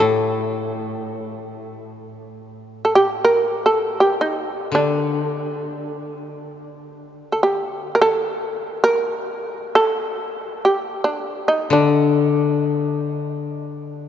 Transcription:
0.00 3.10 A2 soft
0.00 1.08 A4 medium
1.08 1.34 G#4 medium
1.34 2.08 G4 medium
2.85 2.92 A4 soft
2.95 3.21 G4 medium
3.25 3.65 A#4 medium
3.66 3.98 A4 medium
4.00 4.21 G4 medium
4.21 4.70 D#4 medium
4.72 7.66 D3 soft
4.72 6.17 D4 medium
7.32 7.42 A4 soft
7.43 7.91 G4 medium
7.95 8.01 A#4 medium
8.01 8.76 A4 medium
8.84 9.72 A#4 medium
9.75 10.61 A4 medium
10.65 11.01 G4 medium
11.04 11.46 D4 medium
11.48 11.69 D#4 medium
11.70 14.09 D3 soft
11.70 13.87 D4 medium

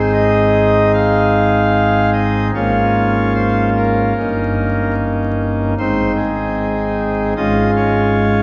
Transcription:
0.00 2.51 G#1 medium
0.00 2.51 G#2 soft
0.00 2.51 C4 soft
0.00 2.51 D#4 soft
0.00 2.51 G#4 soft
0.00 0.12 C5 medium
0.13 0.92 D#5 loud
0.93 2.10 F5 medium
2.13 2.48 D#5 medium
2.54 4.13 G#1 soft
2.54 4.13 G#2 medium
2.54 4.13 A#3 soft
2.54 4.13 C#4 soft
2.54 4.13 F4 soft
2.54 3.33 C#5 medium
3.35 3.70 C5 medium
3.77 4.94 A#4 medium
4.17 5.74 G1 medium
4.17 5.74 G2 medium
4.17 5.74 A#3 soft
4.17 5.74 C#4 soft
4.17 5.74 D#4 soft
5.79 7.34 G#1 medium
5.79 7.34 G#2 medium
5.79 7.34 C4 soft
5.79 7.34 D#4 soft
5.79 6.12 C5 medium
6.16 7.33 G#4 medium
7.36 8.43 G#1 soft
7.36 8.43 G#2 medium
7.36 8.43 G#3 soft
7.36 8.43 C#4 soft
7.36 8.43 F4 soft
7.36 7.71 D#5 loud
7.76 8.43 C#5 medium

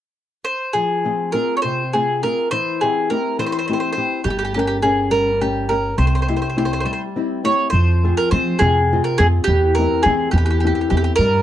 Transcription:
0.44 0.72 C5 medium
0.73 1.33 F3 soft
0.73 1.30 G#4 medium
1.04 1.32 C4 soft
1.04 1.33 F4 soft
1.04 1.33 G#4 soft
1.32 1.82 C4 soft
1.32 1.82 F4 soft
1.32 1.83 G#4 soft
1.32 1.54 A#4 medium
1.57 1.62 C#5 soft
1.62 2.22 C3 soft
1.62 1.95 C5 medium
1.93 2.22 C4 soft
1.93 2.23 F4 soft
1.93 2.21 G#4 medium
1.93 2.23 G#4 soft
2.23 2.47 C4 soft
2.23 2.47 F4 soft
2.23 2.47 G#4 soft
2.23 2.50 A#4 medium
2.51 3.09 E3 soft
2.51 2.83 C5 medium
2.81 3.10 C4 soft
2.81 3.11 E4 soft
2.81 3.11 G4 soft
2.81 3.08 G#4 medium
3.10 3.58 C4 soft
3.10 3.58 E4 soft
3.10 3.58 G4 soft
3.10 3.39 A#4 medium
3.39 3.96 E3 soft
3.39 3.45 C5 medium
3.46 3.51 C5 medium
3.52 3.57 C5 medium
3.59 3.66 C5 soft
3.68 3.96 C4 soft
3.68 3.96 E4 soft
3.68 3.96 G4 soft
3.68 3.72 C5 soft
3.73 3.79 C5 soft
3.80 3.90 C5 soft
3.93 4.21 C5 medium
3.97 4.20 C4 soft
3.97 4.20 E4 soft
3.97 4.20 G4 soft
4.24 5.94 G1 soft
4.24 4.82 G3 soft
4.24 4.29 G4 medium
4.30 4.37 G4 soft
4.39 4.43 G4 medium
4.45 4.53 G4 soft
4.54 4.82 C#4 soft
4.54 4.58 G4 medium
4.54 4.83 G4 soft
4.54 4.83 A#4 soft
4.59 4.66 G4 soft
4.67 4.76 G4 soft
4.83 5.30 C#4 soft
4.83 5.30 G4 soft
4.83 5.09 G#4 medium
4.83 5.31 A#4 soft
5.11 5.68 G3 soft
5.11 5.39 A#4 medium
5.41 5.68 C#4 soft
5.41 5.69 G4 soft
5.41 5.71 G4 medium
5.41 5.69 A#4 soft
5.69 5.92 C#4 soft
5.69 5.93 G4 soft
5.69 5.96 A#4 medium
5.69 5.93 A#4 soft
5.98 6.83 C2 medium
5.98 6.55 C3 soft
5.98 6.05 C5 medium
6.07 6.14 C5 soft
6.15 6.21 C5 medium
6.22 6.27 C5 soft
6.28 6.55 C4 soft
6.28 6.56 E4 soft
6.28 6.56 G4 soft
6.28 6.35 C5 soft
6.36 6.41 C5 soft
6.42 6.48 C5 soft
6.50 6.57 C5 soft
6.57 7.04 C4 soft
6.57 7.04 E4 soft
6.57 7.04 G4 soft
6.57 6.64 C5 medium
6.65 6.72 C5 soft
6.73 6.79 C5 soft
6.80 6.84 C5 soft
6.85 7.43 G3 soft
6.85 6.92 C5 soft
6.93 7.01 C5 soft
7.16 7.43 C4 soft
7.16 7.43 E4 soft
7.16 7.44 G4 soft
7.44 7.68 C4 soft
7.44 7.67 E4 soft
7.44 7.68 G4 soft
7.44 7.70 C#5 medium
7.70 8.12 F2 medium
7.70 8.31 F3 soft
7.70 8.14 C5 medium
8.03 8.31 C4 soft
8.03 8.31 F4 soft
8.03 8.32 G#4 soft
8.17 8.31 A#4 medium
8.31 8.51 F3 medium
8.31 8.80 C4 soft
8.31 8.80 F4 soft
8.31 8.80 G#4 soft
8.31 8.61 C5 medium
8.59 8.99 F2 medium
8.59 9.19 C3 medium
8.59 9.02 G#4 medium
8.93 9.19 C4 soft
8.93 9.19 F4 soft
8.93 9.20 G#4 soft
9.04 9.18 A#4 medium
9.18 9.38 F2 medium
9.18 9.43 C4 soft
9.18 9.43 F4 soft
9.18 9.26 G#4 medium
9.18 9.43 G#4 soft
9.44 9.86 E2 medium
9.44 9.74 G4 medium
9.48 10.04 E3 soft
9.75 10.05 C4 soft
9.75 10.02 A#4 medium
9.79 10.06 E4 soft
9.79 10.06 G4 soft
10.03 10.24 E3 medium
10.03 10.52 C4 soft
10.03 10.31 G#4 medium
10.07 10.53 E4 soft
10.07 10.53 G4 soft
10.31 10.71 E2 medium
10.31 10.90 E3 medium
10.31 10.36 G4 medium
10.38 10.44 G4 soft
10.46 10.49 G4 medium
10.51 10.59 G4 soft
10.60 10.89 C4 soft
10.60 10.66 G4 soft
10.64 10.90 E4 soft
10.64 10.90 G4 soft
10.64 10.74 G4 soft
10.75 10.80 G4 soft
10.81 10.89 G4 soft
10.90 11.10 E2 medium
10.90 11.13 C4 soft
10.90 11.13 E4 soft
10.90 10.96 G4 medium
10.90 11.14 G4 soft
10.97 11.03 G4 medium
11.04 11.12 G4 soft
11.16 11.42 G2 medium
11.16 11.42 G3 medium
11.16 11.42 A#4 medium

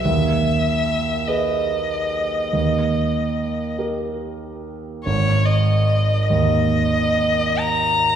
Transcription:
0.04 2.50 D#2 soft
0.04 1.29 E5 medium
1.28 2.50 G#4 soft
1.28 2.50 B4 soft
1.28 3.78 D#5 soft
2.53 5.01 D#2 soft
3.79 5.01 G4 soft
3.79 5.01 A#4 soft
5.04 8.16 G#1 soft
5.04 5.47 C#5 medium
5.46 6.27 D#5 soft
6.28 8.16 D#2 soft
6.28 7.60 D#5 medium
7.58 8.16 A#5 medium

